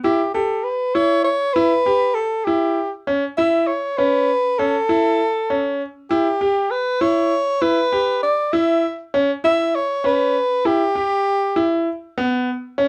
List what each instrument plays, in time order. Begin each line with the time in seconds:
0.04 grand piano E4, soprano saxophone G4
0.34 grand piano G4, soprano saxophone A4
0.64 soprano saxophone B4
0.95 grand piano E4, soprano saxophone C#5
1.24 soprano saxophone C#5
1.54 grand piano E4, soprano saxophone B4
1.86 grand piano G4
2.14 soprano saxophone A4
2.45 grand piano E4, soprano saxophone G4
3.07 grand piano C#4
3.37 grand piano E4, soprano saxophone E5
3.67 soprano saxophone C#5
3.98 grand piano C#4, soprano saxophone B4
4.58 grand piano C#4, soprano saxophone A4
4.89 grand piano E4
5.50 grand piano C#4
6.10 grand piano E4, soprano saxophone G4
6.41 grand piano G4
6.71 soprano saxophone B4
7.01 grand piano E4, soprano saxophone C#5
7.62 grand piano E4, soprano saxophone B4
7.92 grand piano G4
8.23 soprano saxophone D5
8.53 grand piano E4, soprano saxophone E5
9.14 grand piano C#4
9.44 grand piano E4, soprano saxophone E5
9.75 soprano saxophone C#5
10.04 grand piano C#4, soprano saxophone B4
10.65 grand piano E4, soprano saxophone G4
10.95 grand piano G4
11.56 grand piano E4
12.18 grand piano B3
12.78 grand piano C#4